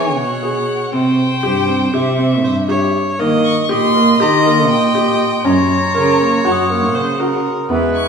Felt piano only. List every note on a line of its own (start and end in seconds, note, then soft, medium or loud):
0.00 0.24 B3 medium
0.43 0.75 G#4 medium
0.93 1.25 C4 medium
1.43 1.59 G4 medium
1.69 1.84 C4 medium
1.94 2.10 G4 medium
2.19 2.51 C4 medium
2.68 3.01 G4 medium
3.19 3.51 A#3 medium
3.69 3.85 G4 medium
3.95 4.10 A#3 medium
4.20 4.36 G4 medium
4.45 4.77 A#3 medium
4.95 5.27 G4 medium
5.45 5.77 C#4 medium
5.95 6.11 A#4 medium
6.20 6.36 A#3 medium
6.45 6.61 F#4 medium
6.70 7.02 A#3 medium
7.20 7.52 F#4 medium
7.70 8.02 B3 medium